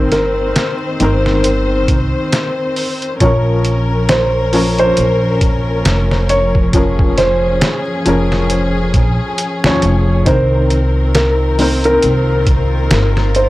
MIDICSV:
0, 0, Header, 1, 7, 480
1, 0, Start_track
1, 0, Tempo, 882353
1, 1744, Time_signature, 4, 2, 24, 8
1, 7339, End_track
2, 0, Start_track
2, 0, Title_t, "Felt piano"
2, 0, Program_c, 0, 0
2, 66, Note_on_c, 0, 70, 89
2, 403, Note_off_c, 0, 70, 0
2, 1749, Note_on_c, 0, 73, 86
2, 2186, Note_off_c, 0, 73, 0
2, 2227, Note_on_c, 0, 72, 90
2, 2563, Note_off_c, 0, 72, 0
2, 2608, Note_on_c, 0, 72, 106
2, 2916, Note_off_c, 0, 72, 0
2, 3426, Note_on_c, 0, 73, 91
2, 3865, Note_off_c, 0, 73, 0
2, 3906, Note_on_c, 0, 72, 93
2, 4242, Note_off_c, 0, 72, 0
2, 5586, Note_on_c, 0, 72, 94
2, 6025, Note_off_c, 0, 72, 0
2, 6067, Note_on_c, 0, 70, 89
2, 6403, Note_off_c, 0, 70, 0
2, 6448, Note_on_c, 0, 70, 102
2, 6756, Note_off_c, 0, 70, 0
2, 7268, Note_on_c, 0, 72, 83
2, 7339, Note_off_c, 0, 72, 0
2, 7339, End_track
3, 0, Start_track
3, 0, Title_t, "Synth drone"
3, 0, Program_c, 1, 95
3, 5583, Note_on_c, 1, 65, 88
3, 7339, Note_off_c, 1, 65, 0
3, 7339, End_track
4, 0, Start_track
4, 0, Title_t, "Upright piano"
4, 0, Program_c, 2, 0
4, 0, Control_c, 2, 64, 127
4, 0, Note_on_c, 2, 51, 86
4, 0, Note_on_c, 2, 60, 75
4, 0, Note_on_c, 2, 70, 88
4, 520, Note_off_c, 2, 51, 0
4, 524, Note_off_c, 2, 60, 0
4, 528, Note_off_c, 2, 70, 0
4, 544, Note_on_c, 2, 51, 87
4, 550, Note_on_c, 2, 60, 72
4, 558, Note_on_c, 2, 70, 95
4, 1720, Note_off_c, 2, 51, 0
4, 1723, Note_off_c, 2, 60, 0
4, 1727, Note_off_c, 2, 70, 0
4, 1746, Note_on_c, 2, 53, 86
4, 1751, Control_c, 2, 64, 0
4, 1754, Note_on_c, 2, 61, 73
4, 1760, Note_on_c, 2, 70, 92
4, 1843, Control_c, 2, 64, 127
4, 2441, Note_off_c, 2, 53, 0
4, 2445, Note_off_c, 2, 61, 0
4, 2448, Note_off_c, 2, 70, 0
4, 2462, Note_on_c, 2, 53, 85
4, 2469, Note_on_c, 2, 61, 84
4, 2476, Note_on_c, 2, 70, 90
4, 3639, Note_off_c, 2, 53, 0
4, 3642, Note_off_c, 2, 61, 0
4, 3646, Note_off_c, 2, 70, 0
4, 3663, Note_on_c, 2, 53, 83
4, 3671, Note_on_c, 2, 61, 73
4, 3678, Note_on_c, 2, 70, 83
4, 4359, Note_off_c, 2, 53, 0
4, 4363, Note_off_c, 2, 61, 0
4, 4366, Note_off_c, 2, 70, 0
4, 4381, Note_on_c, 2, 53, 83
4, 4389, Note_on_c, 2, 61, 75
4, 4395, Note_on_c, 2, 70, 90
4, 5214, Note_off_c, 2, 53, 0
4, 5218, Note_off_c, 2, 61, 0
4, 5221, Note_off_c, 2, 70, 0
4, 5245, Note_on_c, 2, 53, 78
4, 5249, Note_on_c, 2, 61, 73
4, 5253, Note_on_c, 2, 73, 90
4, 5560, Note_off_c, 2, 53, 0
4, 5562, Note_off_c, 2, 61, 0
4, 5564, Note_off_c, 2, 73, 0
4, 5578, Note_on_c, 2, 51, 82
4, 5585, Note_on_c, 2, 60, 68
4, 5591, Control_c, 2, 64, 0
4, 5593, Note_on_c, 2, 70, 90
4, 5693, Control_c, 2, 64, 127
4, 6277, Note_off_c, 2, 51, 0
4, 6280, Note_off_c, 2, 60, 0
4, 6284, Note_off_c, 2, 70, 0
4, 6302, Note_on_c, 2, 51, 82
4, 6308, Note_on_c, 2, 60, 77
4, 6316, Note_on_c, 2, 70, 94
4, 7339, Note_off_c, 2, 51, 0
4, 7339, Note_off_c, 2, 60, 0
4, 7339, Note_off_c, 2, 70, 0
4, 7339, End_track
5, 0, Start_track
5, 0, Title_t, "String section"
5, 0, Program_c, 3, 48
5, 0, Note_on_c, 3, 51, 75
5, 0, Note_on_c, 3, 60, 75
5, 0, Note_on_c, 3, 72, 87
5, 1722, Note_off_c, 3, 51, 0
5, 1723, Note_off_c, 3, 60, 0
5, 1725, Note_off_c, 3, 72, 0
5, 1744, Note_on_c, 3, 53, 78
5, 1744, Note_on_c, 3, 61, 72
5, 1744, Note_on_c, 3, 70, 90
5, 3645, Note_off_c, 3, 70, 0
5, 3664, Note_on_c, 3, 68, 86
5, 5562, Note_off_c, 3, 53, 0
5, 5562, Note_off_c, 3, 61, 0
5, 5565, Note_off_c, 3, 68, 0
5, 5580, Note_on_c, 3, 51, 75
5, 5580, Note_on_c, 3, 60, 69
5, 5580, Note_on_c, 3, 70, 82
5, 7339, Note_off_c, 3, 51, 0
5, 7339, Note_off_c, 3, 60, 0
5, 7339, Note_off_c, 3, 70, 0
5, 7339, End_track
6, 0, Start_track
6, 0, Title_t, "Upright bass"
6, 0, Program_c, 4, 32
6, 0, Note_on_c, 4, 31, 88
6, 286, Note_off_c, 4, 31, 0
6, 547, Note_on_c, 4, 31, 81
6, 1006, Note_off_c, 4, 31, 0
6, 1026, Note_on_c, 4, 36, 78
6, 1148, Note_off_c, 4, 36, 0
6, 1745, Note_on_c, 4, 34, 92
6, 2685, Note_off_c, 4, 34, 0
6, 2708, Note_on_c, 4, 34, 72
6, 3166, Note_off_c, 4, 34, 0
6, 3187, Note_on_c, 4, 29, 91
6, 4126, Note_off_c, 4, 29, 0
6, 4386, Note_on_c, 4, 29, 76
6, 4846, Note_off_c, 4, 29, 0
6, 4865, Note_on_c, 4, 34, 84
6, 4988, Note_off_c, 4, 34, 0
6, 5245, Note_on_c, 4, 39, 77
6, 5332, Note_off_c, 4, 39, 0
6, 5347, Note_on_c, 4, 29, 101
6, 5561, Note_off_c, 4, 29, 0
6, 5584, Note_on_c, 4, 36, 98
6, 6525, Note_off_c, 4, 36, 0
6, 6548, Note_on_c, 4, 36, 74
6, 7006, Note_off_c, 4, 36, 0
6, 7026, Note_on_c, 4, 31, 95
6, 7339, Note_off_c, 4, 31, 0
6, 7339, End_track
7, 0, Start_track
7, 0, Title_t, "Drums"
7, 63, Note_on_c, 9, 42, 65
7, 65, Note_on_c, 9, 38, 36
7, 118, Note_off_c, 9, 42, 0
7, 120, Note_off_c, 9, 38, 0
7, 303, Note_on_c, 9, 42, 85
7, 305, Note_on_c, 9, 38, 107
7, 357, Note_off_c, 9, 42, 0
7, 360, Note_off_c, 9, 38, 0
7, 544, Note_on_c, 9, 42, 72
7, 598, Note_off_c, 9, 42, 0
7, 686, Note_on_c, 9, 38, 54
7, 740, Note_off_c, 9, 38, 0
7, 784, Note_on_c, 9, 42, 87
7, 838, Note_off_c, 9, 42, 0
7, 1024, Note_on_c, 9, 36, 92
7, 1024, Note_on_c, 9, 42, 65
7, 1078, Note_off_c, 9, 36, 0
7, 1079, Note_off_c, 9, 42, 0
7, 1265, Note_on_c, 9, 42, 81
7, 1267, Note_on_c, 9, 38, 101
7, 1319, Note_off_c, 9, 42, 0
7, 1321, Note_off_c, 9, 38, 0
7, 1504, Note_on_c, 9, 46, 68
7, 1558, Note_off_c, 9, 46, 0
7, 1643, Note_on_c, 9, 42, 38
7, 1698, Note_off_c, 9, 42, 0
7, 1743, Note_on_c, 9, 36, 108
7, 1743, Note_on_c, 9, 42, 84
7, 1797, Note_off_c, 9, 42, 0
7, 1798, Note_off_c, 9, 36, 0
7, 1983, Note_on_c, 9, 42, 65
7, 2038, Note_off_c, 9, 42, 0
7, 2224, Note_on_c, 9, 42, 83
7, 2226, Note_on_c, 9, 38, 105
7, 2278, Note_off_c, 9, 42, 0
7, 2280, Note_off_c, 9, 38, 0
7, 2464, Note_on_c, 9, 46, 84
7, 2518, Note_off_c, 9, 46, 0
7, 2603, Note_on_c, 9, 42, 47
7, 2657, Note_off_c, 9, 42, 0
7, 2703, Note_on_c, 9, 42, 95
7, 2757, Note_off_c, 9, 42, 0
7, 2944, Note_on_c, 9, 36, 91
7, 2944, Note_on_c, 9, 42, 72
7, 2998, Note_off_c, 9, 36, 0
7, 2999, Note_off_c, 9, 42, 0
7, 3184, Note_on_c, 9, 42, 90
7, 3186, Note_on_c, 9, 38, 118
7, 3238, Note_off_c, 9, 42, 0
7, 3240, Note_off_c, 9, 38, 0
7, 3326, Note_on_c, 9, 38, 51
7, 3381, Note_off_c, 9, 38, 0
7, 3424, Note_on_c, 9, 42, 73
7, 3478, Note_off_c, 9, 42, 0
7, 3563, Note_on_c, 9, 36, 86
7, 3617, Note_off_c, 9, 36, 0
7, 3662, Note_on_c, 9, 42, 83
7, 3663, Note_on_c, 9, 36, 104
7, 3717, Note_off_c, 9, 36, 0
7, 3717, Note_off_c, 9, 42, 0
7, 3803, Note_on_c, 9, 36, 98
7, 3858, Note_off_c, 9, 36, 0
7, 3904, Note_on_c, 9, 42, 71
7, 3906, Note_on_c, 9, 38, 38
7, 3958, Note_off_c, 9, 42, 0
7, 3960, Note_off_c, 9, 38, 0
7, 4142, Note_on_c, 9, 42, 81
7, 4144, Note_on_c, 9, 38, 113
7, 4197, Note_off_c, 9, 42, 0
7, 4199, Note_off_c, 9, 38, 0
7, 4383, Note_on_c, 9, 42, 71
7, 4437, Note_off_c, 9, 42, 0
7, 4526, Note_on_c, 9, 38, 51
7, 4580, Note_off_c, 9, 38, 0
7, 4623, Note_on_c, 9, 42, 93
7, 4677, Note_off_c, 9, 42, 0
7, 4863, Note_on_c, 9, 36, 91
7, 4863, Note_on_c, 9, 42, 67
7, 4917, Note_off_c, 9, 36, 0
7, 4917, Note_off_c, 9, 42, 0
7, 5103, Note_on_c, 9, 42, 88
7, 5157, Note_off_c, 9, 42, 0
7, 5245, Note_on_c, 9, 38, 118
7, 5299, Note_off_c, 9, 38, 0
7, 5343, Note_on_c, 9, 42, 70
7, 5397, Note_off_c, 9, 42, 0
7, 5583, Note_on_c, 9, 36, 114
7, 5583, Note_on_c, 9, 42, 87
7, 5637, Note_off_c, 9, 36, 0
7, 5637, Note_off_c, 9, 42, 0
7, 5823, Note_on_c, 9, 42, 64
7, 5877, Note_off_c, 9, 42, 0
7, 6064, Note_on_c, 9, 42, 81
7, 6066, Note_on_c, 9, 38, 113
7, 6118, Note_off_c, 9, 42, 0
7, 6120, Note_off_c, 9, 38, 0
7, 6304, Note_on_c, 9, 46, 84
7, 6358, Note_off_c, 9, 46, 0
7, 6442, Note_on_c, 9, 42, 45
7, 6496, Note_off_c, 9, 42, 0
7, 6542, Note_on_c, 9, 42, 89
7, 6596, Note_off_c, 9, 42, 0
7, 6781, Note_on_c, 9, 42, 68
7, 6782, Note_on_c, 9, 36, 100
7, 6836, Note_off_c, 9, 36, 0
7, 6836, Note_off_c, 9, 42, 0
7, 7021, Note_on_c, 9, 42, 88
7, 7023, Note_on_c, 9, 38, 115
7, 7076, Note_off_c, 9, 42, 0
7, 7078, Note_off_c, 9, 38, 0
7, 7164, Note_on_c, 9, 38, 51
7, 7218, Note_off_c, 9, 38, 0
7, 7261, Note_on_c, 9, 42, 69
7, 7315, Note_off_c, 9, 42, 0
7, 7339, End_track
0, 0, End_of_file